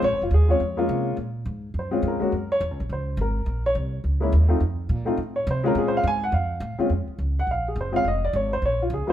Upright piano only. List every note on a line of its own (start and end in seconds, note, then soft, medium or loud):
0.04 0.21 C#5 loud
0.23 0.33 F4 medium
0.34 0.50 G#4 medium
0.48 0.59 G#3 medium
0.48 0.59 C4 medium
0.48 0.59 C#4 medium
0.48 0.59 F4 medium
0.48 1.14 C#5 medium
0.77 1.15 G#3 medium
0.77 1.15 A#3 medium
0.77 1.15 C#4 medium
0.77 1.16 F4 medium
1.79 2.04 C5 medium
1.91 2.18 G#3 medium
1.91 2.19 C4 medium
1.91 2.19 C#4 medium
1.91 2.19 F4 medium
2.08 2.49 A#4 medium
2.20 2.30 G#3 medium
2.20 2.31 A#3 medium
2.20 2.31 C#4 medium
2.20 2.31 F#4 medium
2.52 2.61 C#5 loud
2.93 3.18 C5 medium
3.21 3.63 A#4 medium
3.66 3.72 C#5 loud
4.20 4.31 G#3 medium
4.20 4.31 A#3 medium
4.20 4.32 C#4 medium
4.20 4.32 E4 medium
4.48 4.59 A3 medium
4.48 4.59 C4 medium
4.48 4.60 D#4 medium
4.48 4.60 F4 medium
5.05 5.16 A3 medium
5.05 5.17 C4 medium
5.05 5.17 D#4 medium
5.05 5.17 F4 medium
5.36 5.47 C#5 medium
5.51 5.66 C5 medium
5.64 6.01 G#3 medium
5.64 6.02 C4 medium
5.64 6.02 C#4 medium
5.64 6.03 F4 medium
5.64 5.77 A#4 medium
5.78 5.86 G#4 medium
5.88 5.96 C5 medium
5.97 6.05 F5 medium
6.08 6.23 G#5 loud
6.24 6.33 F#5 medium
6.34 6.76 F5 medium
6.78 6.89 A#2 medium
6.78 6.89 G#3 medium
6.78 6.89 C4 medium
6.78 6.89 C#4 medium
6.78 6.90 F4 medium
7.39 7.49 F#5 medium
7.51 7.66 F5 medium
7.68 7.77 G#4 medium
7.81 7.95 C5 medium
7.92 8.03 G#3 medium
7.92 8.03 C4 medium
7.92 8.03 C#4 medium
7.92 8.03 F4 medium
7.96 8.06 F5 loud
8.08 8.23 D#5 medium
8.25 8.34 D5 medium
8.36 8.52 C#5 medium
8.53 8.63 C5 medium
8.66 8.81 C#5 medium
8.82 8.92 F4 medium
8.94 9.09 G#4 medium
9.07 9.13 F#3 medium
9.07 9.13 A#3 medium
9.07 9.13 C#4 medium
9.07 9.13 F4 medium